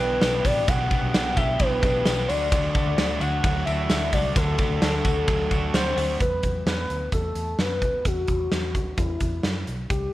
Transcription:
Already playing: clean electric guitar B2 E3 B3 G4, overdriven electric guitar G4, soft synth lead B4
0.00 fingered electric bass B1, overdriven electric guitar B3 D4, tambourine
0.21 fingered electric bass B1, overdriven electric guitar E3 B3 D4 G4, snare, ride, tambourine
0.45 fingered electric bass A1, overdriven electric guitar B3 D4 G4, soft synth lead D5, kick, open hi-hat, ride, tambourine
0.68 fingered electric bass B1, overdriven electric guitar B2 E3 B3 D4 G4, soft synth lead F#5, kick, hi-hat pedal, ride, tambourine
0.90 overdriven electric guitar B3 D4 G4, kick, ride
1.03 fingered electric bass B1
1.13 fingered electric bass B1, overdriven electric guitar E3 B3 D4 G4, snare, ride, tambourine
1.36 fingered electric bass B1, overdriven electric guitar B3 D4 G4, soft synth lead E5, kick, ride, tambourine
1.59 fingered electric bass B1, overdriven electric guitar B2 E3 B3 D4 G4, soft synth lead B4, kick, ride
1.82 fingered electric bass B1, overdriven electric guitar B3 D4 G4, kick, ride, tambourine
2.05 fingered electric bass B1, overdriven electric guitar E3 B3 D4 G4, snare, ride, tambourine
2.28 fingered electric bass D2, clean electric guitar D3, overdriven electric guitar A3 D4 F#4, soft synth lead D5, open hi-hat, ride, tambourine
2.51 overdriven electric guitar D3 F#3 A3 D4 F#4, kick, hi-hat pedal, ride, tambourine
2.75 overdriven electric guitar A3 D4 F#4, kick, ride, tambourine
2.87 fingered electric bass D2
2.97 fingered electric bass D2, overdriven electric guitar F#3 A3 D4 F#4, clean electric guitar C4, snare, ride, tambourine
3.09 clean electric guitar D4
3.20 fingered electric bass D2, overdriven electric guitar A3 D4 F#4, soft synth lead F#5, ride, tambourine
3.44 fingered electric bass D2, overdriven electric guitar D3 F#3 A3 D4 F#4, kick, ride, tambourine
3.65 fingered electric bass D2, overdriven electric guitar D4 F#4, soft synth lead E5, ride, tambourine
3.70 overdriven electric guitar A3
3.89 fingered electric bass D2, overdriven electric guitar F#3 A3 D4 F#4, snare, ride, tambourine
4.13 fingered electric bass C2, overdriven electric guitar A3 D4 F#4, soft synth lead D5, kick, open hi-hat, ride, tambourine
4.36 fingered electric bass D2, overdriven electric guitar D3 F#3 A3 D4 F#4, soft synth lead A4, kick, hi-hat pedal, ride, tambourine
4.58 overdriven electric guitar A3 D4 F#4, kick, ride, tambourine
4.70 fingered electric bass D2
4.82 fingered electric bass D2, overdriven electric guitar F#3 A3 D4 F#4, snare, ride, tambourine
5.04 fingered electric bass D2, overdriven electric guitar A3 D4 F#4, kick, ride, tambourine
5.27 fingered electric bass D2, overdriven electric guitar D3 F#3 A3 D4 F#4, kick, ride, tambourine
5.50 fingered electric bass D2, overdriven electric guitar A3 D4 F#4, kick, ride, tambourine
5.74 fingered electric bass D2, overdriven electric guitar F#3 A3 D4 F#4, soft synth lead C5, snare, ride, tambourine
5.96 fingered electric bass D2, overdriven electric guitar A3 D4 F#4, open hi-hat, ride, tambourine
6.20 fingered electric bass E2, soft synth lead B4, kick, closed hi-hat
6.43 fingered electric bass E2, kick, closed hi-hat
6.66 fingered electric bass E2, soft synth lead B4, snare, closed hi-hat
6.90 fingered electric bass D2, closed hi-hat
7.12 fingered electric bass E2, soft synth lead A4, kick, closed hi-hat
7.36 fingered electric bass E2, closed hi-hat
7.59 fingered electric bass F#2, soft synth lead B4, snare, closed hi-hat
7.82 fingered electric bass D2, kick, closed hi-hat
8.05 fingered electric bass E2, soft synth lead F#4, kick, closed hi-hat
8.28 fingered electric bass E2, kick, closed hi-hat
8.51 fingered electric bass E2, snare, closed hi-hat
8.75 fingered electric bass D2, kick, closed hi-hat
8.97 fingered electric bass E2, soft synth lead E4, kick, closed hi-hat
9.20 fingered electric bass E2, kick, closed hi-hat
9.44 fingered electric bass F#2, snare, closed hi-hat
9.67 fingered electric bass B1, closed hi-hat
9.89 fingered electric bass C2, soft synth lead G4, kick, closed hi-hat

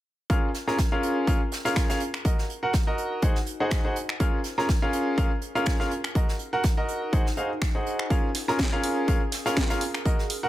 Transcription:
0.30 ambient pad C#4, grand piano C#4 F4 G#4 A#4 F5, kick, closed hi-hat
0.50 ambient pad A#4, snare
0.54 closed hi-hat
0.61 ambient pad G#4
0.67 grand piano C#4 F4 G#4 A#4 A#5, snare
0.75 ambient pad F5, kick, snare, closed hi-hat
0.92 grand piano C#4 F4 G#4 A#4 F5
1.03 closed hi-hat
1.27 grand piano C#4 F4 G#4 A#4 F5, kick, closed hi-hat
1.52 snare, closed hi-hat
1.65 grand piano C#4 F4 G#4 A#4 F5, snare, closed hi-hat
1.76 finger snap, kick, snare, closed hi-hat
1.90 grand piano C#4 F4 G#4 A#4 F5, snare, closed hi-hat
2.00 ambient pad D#4, closed hi-hat
2.14 finger snap, closed hi-hat
2.25 grand piano F#4 A#4 D#5, kick, closed hi-hat
2.32 ambient pad F#4
2.38 snare
2.50 closed hi-hat
2.56 ambient pad F#5
2.63 grand piano F#4 A#4 F#5
2.73 kick, snare, closed hi-hat
2.87 grand piano F#4 A#4 D#5
2.98 closed hi-hat
3.22 grand piano D#4 F#4 G#4 C5 F#5, kick, closed hi-hat
3.35 snare
3.46 closed hi-hat
3.59 grand piano D#4 F#4 G#4 C5 F#5, ambient pad C5
3.67 ambient pad G#4, kick, snare, closed hi-hat
3.71 finger snap
3.85 grand piano D#4 F#4 G#4 C5 F#5
3.96 closed hi-hat
4.09 finger snap
4.20 grand piano C#4 F4 G#4 A#4 F5, ambient pad C#4, kick, closed hi-hat
4.44 snare, closed hi-hat
4.52 ambient pad A#4
4.58 grand piano C#4 F4 G#4 A#4 A#5, snare
4.65 ambient pad F5, snare
4.69 kick, closed hi-hat
4.82 grand piano C#4 F4 G#4 A#4 F5
4.93 closed hi-hat
5.18 grand piano C#4 F4 G#4 A#4 F5, kick, closed hi-hat
5.42 closed hi-hat
5.55 grand piano C#4 F4 G#4 A#4 F5, closed hi-hat
5.66 finger snap, kick, snare, closed hi-hat
5.80 grand piano C#4 F4 G#4 A#4 F5, snare
5.91 ambient pad D#4, closed hi-hat
6.04 finger snap, closed hi-hat
6.15 grand piano F#4 A#4 D#5, ambient pad F#4, kick, closed hi-hat
6.28 ambient pad F#5, snare
6.39 closed hi-hat
6.53 grand piano F#4 A#4 F#5
6.64 kick, snare, closed hi-hat
6.77 grand piano F#4 A#4 D#5
6.88 closed hi-hat
7.13 grand piano D#4 F#4 G#4 C5 F#5, kick, closed hi-hat
7.22 ambient pad G#4, snare
7.37 grand piano D#4 F#4 G#4 C5 F5, closed hi-hat
7.57 ambient pad C5
7.61 finger snap, kick, snare, closed hi-hat
7.75 grand piano D#4 F#4 G#4 C5 F#5
7.86 closed hi-hat
7.99 finger snap
8.10 ambient pad C#4, grand piano C#4 F4 G#4 A#4 F5, kick, closed hi-hat
8.35 snare, closed hi-hat, open hi-hat
8.48 grand piano C#4 F4 G#4 A#4 A#5, snare
8.55 ambient pad A#4 F5, closed hi-hat
8.59 kick, snare
8.73 grand piano C#4 F4 G#4 A#4 F5
8.83 closed hi-hat, open hi-hat
9.08 grand piano C#4 F4 G#4 A#4 F5, kick, closed hi-hat
9.32 snare, closed hi-hat, open hi-hat
9.46 grand piano C#4 F4 G#4 A#4 F5, snare, closed hi-hat
9.56 finger snap, kick, snare, closed hi-hat
9.69 grand piano C#4 F4 G#4 A#4 F5, snare, closed hi-hat
9.81 ambient pad D#4, closed hi-hat, open hi-hat
9.94 finger snap, closed hi-hat
10.05 grand piano F#4 A#4 D#5, ambient pad F#4, kick, closed hi-hat
10.18 snare
10.30 closed hi-hat, open hi-hat
10.37 ambient pad F#5
10.43 grand piano F#4 A#4 F#5

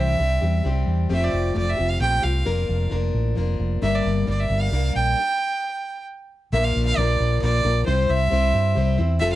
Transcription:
Already playing: fingered electric bass C2, steel-string acoustic guitar C3 E3 G3 C4 D4 G4
0.00 fiddle E5
0.18 fingered electric bass C2, steel-string acoustic guitar G3 C4 D4 G4
0.41 fingered electric bass E2, steel-string acoustic guitar G3 C4 D4 G4
0.64 fingered electric bass C2, steel-string acoustic guitar G3 C4 D4 G4
0.87 fingered electric bass E2
1.09 fingered electric bass F1, steel-string acoustic guitar F3 A3 C4 F4 G4, fiddle E5
1.24 fiddle D5
1.33 fingered electric bass F1
1.54 fingered electric bass F1, steel-string acoustic guitar A3 C4 F4 G4, fiddle D5
1.69 fiddle E5
1.77 fingered electric bass F1, steel-string acoustic guitar C4 F4 G4
1.90 fiddle F5
2.00 fingered electric bass A#1, steel-string acoustic guitar A3 C4 F4 G4, fiddle G5
2.23 fingered electric bass C2, steel-string acoustic guitar C4 F4 G4, fiddle F5
2.45 fingered electric bass F1, steel-string acoustic guitar F3 A#3 D4 A#4
2.69 fingered electric bass F1
2.90 fingered electric bass F1, steel-string acoustic guitar F3 A#3 D4 A#4
3.14 fingered electric bass A1
3.35 fingered electric bass F1, steel-string acoustic guitar F3 A#3 D4 A#4
3.59 fingered electric bass F1
3.82 fingered electric bass G1, steel-string acoustic guitar G2 D3 G3 A#3 D4 A#4, fiddle E5
3.95 fiddle D5
4.05 fingered electric bass G1
4.26 fingered electric bass G1, steel-string acoustic guitar G3 A#3 D4 A#4, fiddle D5
4.40 fiddle E5
4.50 fingered electric bass G1
4.61 fiddle F5
4.71 fingered electric bass C2, steel-string acoustic guitar G3 A#3 D4 A#4
4.95 fingered electric bass A#1, fiddle G5
6.52 fingered electric bass A#1, steel-string acoustic guitar A#2 D3 F3 A#3 D4 A#4, fiddle E5
6.64 fiddle F5
6.76 fingered electric bass A#1
6.85 fiddle F5
6.97 fingered electric bass A#1, steel-string acoustic guitar F3 A#3 D4 A#4, fiddle D5
7.20 fingered electric bass A#1
7.41 fingered electric bass A#1, steel-string acoustic guitar F3 A#3 D4 A#4, fiddle D5
7.64 fingered electric bass A#1, steel-string acoustic guitar F3 A#3 D4 A#4
7.86 fingered electric bass C2, steel-string acoustic guitar C3 G3 C4 E4 C5, fiddle C5
8.09 fingered electric bass C2, fiddle E5
8.30 fingered electric bass C2, steel-string acoustic guitar G3 C4 E4 C5
8.54 fingered electric bass G2
8.75 fingered electric bass C2, steel-string acoustic guitar G3 C4 E4 C5
8.98 fingered electric bass E2, steel-string acoustic guitar C4 E4 C5
9.19 fingered electric bass F1, steel-string acoustic guitar F3 C4 F4 A4, fiddle E5
9.32 fiddle F5

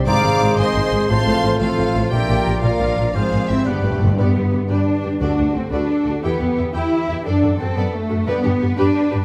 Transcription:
Already playing: harp C5
0.00 harp C6
0.06 double bass section G#1, harp G#2, cello section G#2, trombone section D#3 G#3, french horn section C4 C5, clarinet G#4, oboe C5, viola section D5, violin section F5 D6, flute A#5
0.15 harp D#3
0.24 double bass section G#1, cello section G#2, harp C4
0.33 harp G#4
0.41 double bass section G#1, cello section G#2, harp C5
0.50 harp G#4
0.57 double bass section G#1, cello section G#2, trombone section D#3 G#3, french horn section C4 C5, viola section C5, violin section D#5 C6, flute G#5, harp G#5
0.67 harp C6
0.75 double bass section G#1, cello section G#2, harp G#5
0.92 double bass section G#1, cello section G#2, harp G#5
1.01 harp C6
1.09 double bass section A1, harp A2, cello section A2, trombone section F3 A3, french horn section C4 C5, clarinet F4, viola section C5, violin section F5 C6, flute A5
1.18 harp A3
1.26 double bass section A1, cello section A2, harp C4
1.43 double bass section A1, cello section A2, harp C5
1.52 harp F4
1.60 double bass section A1, cello section A2, trombone section F3 A3, french horn section C4 C5, viola section F4, violin section A4 F5, flute C5
1.69 harp C6
1.78 double bass section A1, cello section A2
1.87 harp C6
1.95 double bass section A1, cello section A2, harp C5
2.03 harp C6
2.09 double bass section A#1, harp A#2, cello section A#2, trombone section F3 A#3, french horn section D4 A#4, viola section G4, violin section A#4 G5, oboe D5, flute E5
2.20 harp F3
2.29 double bass section A#1, cello section A#2, harp D4
2.37 harp F4
2.46 double bass section A#1, cello section A#2, harp A#4
2.55 harp D5
2.62 double bass section A#1, cello section A#2, trombone section F3 A#3, french horn section D4 A#4, viola section F4, violin section A#4 F5, flute D5, harp F5
2.71 harp A#5
2.80 double bass section A#1, cello section A#2, harp F5
2.89 harp A#5
2.97 double bass section A#1, cello section A#2, harp F5
3.06 harp A#5
3.14 double bass section G#1, harp G#2, cello section G#2, trombone section F3 G#3, french horn section C4 C5, viola section F4, violin section G#4 F5, flute C5, oboe C5
3.24 harp G#3
3.32 double bass section G#1, cello section G#2, harp C4
3.40 harp F4
3.49 double bass section G#1, cello section G#2 C4, viola section E4, violin section G4 E5, flute C5, harp C5
3.58 harp F4
3.65 double bass section G1, harp G2, timpani G2, cello section G2 B3, trombone section G3, french horn section B3 G4, viola section D4, clarinet G4, violin section G4 D5, oboe B4, flute B4
3.75 timpani G2, harp D3
3.82 double bass section G1, timpani G2, cello section G2 A3, harp D4
3.90 timpani G2, harp G4
3.97 timpani G2, harp B4
4.02 double bass section G1, cello section G2, timpani G2
4.09 harp D5
4.18 harp G2, timpani G2, double bass section G2, cello section B3, viola section G4 B4, violin section D5
4.35 double bass section G2, harp D3, viola section D4 G4, violin section G4
4.52 double bass section G2, harp D4, viola section G4, violin section B4
4.69 double bass section G2, cello section D4, harp G4, viola section G4 B4, violin section D5
4.87 harp B4
5.03 double bass section G2, viola section G4, harp G4, violin section B4
5.20 double bass section D2, timpani D3, harp D3, cello section D4, viola section F#4 A4, violin section F#4 D5
5.38 double bass section D2, harp A3, viola section D4 F#4, violin section F#4
5.55 double bass section D2, cello section C4, harp D4, viola section F#4, violin section A4
5.71 double bass section D2, cello section D4, viola section F#4 A4, harp F#4, violin section B4 D5
5.90 violin section A4, harp A4
6.06 double bass section D2, harp F#4, violin section F#4 A4, viola section F#4
6.23 double bass section E2, harp E3, cello section B3, viola section E4 G4, violin section G4 G5
6.40 double bass section E2, viola section B3 E4, harp B3, violin section B4
6.57 double bass section E2, viola section E4, harp E4, violin section E5
6.73 double bass section E2, viola section E4 G4, cello section E4, harp G4, violin section G4 G5
6.92 harp B4
7.08 double bass section E2, viola section E4, harp G4, violin section E5
7.24 double bass section F#2, harp F#2, cello section D4, viola section A4, violin section A4 D5
7.42 double bass section F#2, harp F#3, viola section D4 A4, violin section F#4
7.58 double bass section F#2, harp A3, cello section C4, viola section F#4 A4, violin section A4
7.75 double bass section F#2, cello section B3, harp D4, viola section A4, violin section D5
7.93 cello section A3, harp A4
8.09 double bass section F#2, harp D4, viola section F#4 A4, violin section A4
8.27 timpani G2, double bass section G2, harp G2, cello section B3, viola section G4 B4, violin section B4 D5
8.43 double bass section G2, harp D3, viola section D4 G4, violin section G4
8.60 double bass section G2, harp B3, viola section G4, violin section B4
8.77 double bass section G2, harp D4, cello section D4, viola section G4 B4, violin section D5
8.95 harp G4
9.11 double bass section G2, harp D4, viola section G4, violin section B4

